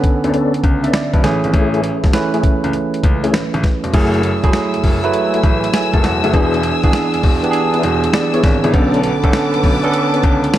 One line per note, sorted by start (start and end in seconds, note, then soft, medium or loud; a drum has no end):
0.00 0.12 D2 soft
0.00 1.25 D3 medium
0.00 1.26 B3 medium
0.00 1.24 C#4 medium
0.00 1.25 A4 medium
0.00 0.34 B4 loud
0.00 kick medium
0.00 closed hi-hat medium
0.24 0.31 D2 medium
0.24 0.32 B3 medium
0.24 0.32 C#4 medium
0.24 0.33 D4 medium
0.24 0.33 A4 medium
0.24 closed hi-hat soft
0.33 0.53 B3 medium
0.33 0.53 C#4 medium
0.33 0.53 D4 medium
0.33 0.53 A4 medium
0.33 closed hi-hat medium
0.54 closed hi-hat soft
0.64 0.85 C#2 medium
0.64 kick medium
0.64 closed hi-hat medium
0.84 0.93 B3 medium
0.84 0.93 C#4 medium
0.84 0.93 D4 medium
0.84 0.94 A4 medium
0.84 0.93 E5 medium
0.84 closed hi-hat medium
0.93 1.13 D5 medium
0.93 snare loud
0.93 closed hi-hat medium
1.13 1.21 B1 medium
1.13 1.42 B4 medium
1.13 kick medium
1.13 closed hi-hat soft
1.23 1.38 A1 loud
1.23 2.07 E3 medium
1.23 2.08 A3 medium
1.23 2.08 C#4 medium
1.23 2.08 G#4 medium
1.23 snare medium
1.23 closed hi-hat medium
1.44 1.51 G#1 medium
1.44 closed hi-hat medium
1.53 1.89 A1 loud
1.53 1.82 A3 medium
1.53 1.82 C#4 medium
1.53 1.82 E4 medium
1.53 1.82 G#4 loud
1.53 kick loud
1.53 closed hi-hat medium
1.74 closed hi-hat medium
1.84 closed hi-hat medium
2.04 2.11 B1 medium
2.04 kick medium
2.04 snare medium
2.04 closed hi-hat soft
2.13 3.26 E3 medium
2.13 3.26 A3 medium
2.13 3.26 C#4 medium
2.13 3.26 B4 medium
2.13 snare loud
2.13 closed hi-hat medium
2.33 2.43 A3 medium
2.33 2.43 C#4 medium
2.33 2.43 E4 medium
2.33 2.43 G#4 medium
2.33 closed hi-hat soft
2.43 2.52 C#2 soft
2.43 kick medium
2.43 closed hi-hat medium
2.64 2.71 C#2 medium
2.64 closed hi-hat soft
2.73 closed hi-hat medium
2.94 closed hi-hat soft
3.04 3.25 C#2 medium
3.04 kick medium
3.04 closed hi-hat medium
3.23 3.33 A3 medium
3.23 3.33 C#4 medium
3.23 3.33 E4 medium
3.23 3.34 G#4 medium
3.23 closed hi-hat medium
3.34 3.42 A1 soft
3.34 snare loud
3.34 closed hi-hat medium
3.54 3.61 A1 loud
3.54 closed hi-hat soft
3.64 kick loud
3.64 snare medium
3.64 closed hi-hat medium
3.84 3.91 E1 medium
3.84 closed hi-hat medium
3.93 4.29 F#1 loud
3.93 4.38 F#3 medium
3.93 4.22 A3 medium
3.93 6.31 A3 medium
3.93 4.38 A3 medium
3.93 4.22 E4 medium
3.93 4.38 E4 medium
3.93 4.22 F#4 medium
3.93 4.22 G#4 loud
3.93 4.38 G#4 medium
3.93 8.69 G#5 medium
3.93 8.70 E6 medium
3.93 kick loud
3.93 closed hi-hat medium
3.93 crash medium
4.14 closed hi-hat medium
4.23 closed hi-hat medium
4.43 4.51 E1 medium
4.43 4.96 F#3 medium
4.43 4.96 A3 medium
4.43 4.96 E4 medium
4.43 4.96 G#4 medium
4.43 kick medium
4.43 closed hi-hat soft
4.53 snare loud
4.53 closed hi-hat medium
4.74 4.78 F#1 soft
4.74 closed hi-hat medium
4.84 4.98 F#1 medium
4.84 kick medium
4.84 open hi-hat medium
5.03 6.08 F#3 medium
5.03 6.08 A3 medium
5.03 6.09 E4 medium
5.03 6.09 B4 loud
5.03 closed hi-hat soft
5.14 closed hi-hat medium
5.33 5.43 A3 medium
5.33 5.43 E4 medium
5.33 5.43 F#4 medium
5.33 5.44 G#4 medium
5.33 closed hi-hat soft
5.44 5.65 A1 medium
5.44 kick medium
5.44 closed hi-hat medium
5.64 closed hi-hat medium
5.74 5.93 G#5 medium
5.74 snare loud
5.74 closed hi-hat medium
5.93 6.01 F#1 medium
5.93 6.03 A3 medium
5.93 6.03 E4 medium
5.93 6.03 F#4 medium
5.93 6.04 G#4 medium
5.93 6.03 A5 medium
5.93 kick medium
5.93 closed hi-hat soft
6.04 6.18 E1 loud
6.04 6.23 F#5 medium
6.04 snare medium
6.04 closed hi-hat medium
6.24 6.31 F#1 medium
6.24 6.33 A3 medium
6.24 6.33 E4 medium
6.24 6.33 F#4 medium
6.24 6.33 G#4 medium
6.24 6.52 E5 medium
6.24 closed hi-hat medium
6.33 6.69 E1 loud
6.33 6.78 E3 medium
6.33 6.62 B3 loud
6.33 6.78 B3 medium
6.33 8.71 D4 medium
6.33 6.62 D4 medium
6.33 6.78 D4 medium
6.33 6.62 E4 medium
6.33 6.62 G#4 loud
6.33 6.78 G#4 medium
6.33 kick loud
6.33 closed hi-hat medium
6.54 closed hi-hat soft
6.63 closed hi-hat medium
6.83 6.91 G#1 medium
6.83 7.36 E3 medium
6.83 7.36 B3 medium
6.83 7.36 D4 medium
6.83 7.36 G#4 medium
6.83 kick medium
6.83 closed hi-hat soft
6.93 snare loud
6.93 closed hi-hat medium
7.14 7.18 E1 soft
7.14 closed hi-hat medium
7.23 7.38 E1 medium
7.23 kick medium
7.23 open hi-hat medium
7.43 8.48 E3 medium
7.43 8.48 B3 medium
7.43 8.48 D4 medium
7.43 7.48 G4 medium
7.43 closed hi-hat soft
7.51 8.52 G#4 loud
7.51 closed hi-hat medium
7.73 7.83 B3 medium
7.73 7.83 D4 medium
7.73 7.83 E4 medium
7.73 7.83 G#4 medium
7.73 closed hi-hat soft
7.83 8.05 E1 medium
7.83 closed hi-hat medium
8.04 closed hi-hat medium
8.13 8.33 D5 medium
8.13 snare loud
8.13 closed hi-hat medium
8.34 8.43 B3 medium
8.34 8.43 D4 medium
8.34 8.43 E4 medium
8.34 8.44 G#4 medium
8.34 8.62 C#5 medium
8.34 closed hi-hat soft
8.44 8.58 G#1 medium
8.44 kick loud
8.44 snare medium
8.44 closed hi-hat medium
8.64 8.71 A1 medium
8.64 8.72 B3 medium
8.64 8.73 D4 medium
8.64 8.73 E4 medium
8.64 8.74 G#4 medium
8.64 8.92 B4 medium
8.64 closed hi-hat medium
8.73 9.09 B1 loud
8.73 9.18 D3 medium
8.73 9.02 B3 loud
8.73 9.18 B3 medium
8.73 9.02 C#4 medium
8.73 9.18 C#4 medium
8.73 9.02 D4 medium
8.73 9.02 A4 loud
8.73 9.18 A4 medium
8.73 10.58 B4 medium
8.73 10.58 A5 medium
8.73 10.58 D6 medium
8.73 kick loud
8.73 closed hi-hat medium
8.94 closed hi-hat medium
9.03 closed hi-hat medium
9.23 9.31 A1 medium
9.23 9.76 D3 medium
9.23 9.76 B3 medium
9.23 9.76 C#4 medium
9.23 9.76 A4 loud
9.23 kick medium
9.23 closed hi-hat medium
9.33 snare loud
9.33 closed hi-hat medium
9.54 9.58 B1 soft
9.54 closed hi-hat medium
9.64 9.78 B1 medium
9.64 kick medium
9.64 open hi-hat medium
9.83 10.58 B3 medium
9.83 10.58 C#4 medium
9.83 10.58 D4 medium
9.83 10.58 A4 loud
9.83 closed hi-hat medium
9.94 closed hi-hat medium
10.13 10.23 B3 medium
10.13 10.23 C#4 medium
10.13 10.23 D4 medium
10.13 10.24 A4 medium
10.13 closed hi-hat soft
10.23 10.45 C#2 medium
10.23 kick loud
10.23 closed hi-hat medium
10.44 closed hi-hat medium
10.54 snare loud
10.54 closed hi-hat medium